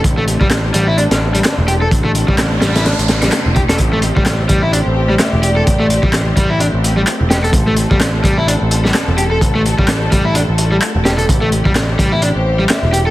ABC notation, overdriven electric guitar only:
X:1
M:4/4
L:1/16
Q:"Swing 16ths" 1/4=128
K:Am
V:1 name="Overdriven electric guitar"
z A, z G, z2 G, E D z2 G, z2 G A | z A, z G, z2 G, E D z2 G, z2 G A | z A, z G, z2 G, E D z2 G, z2 G A | z A, z G, z2 G, E D z2 G, z2 G A |
z A, z G, z2 G, E D z2 G, z2 G A | z A, z G, z2 G, E D z2 G, z2 G A | z A, z G, z2 G, E D z2 G, z2 G A |]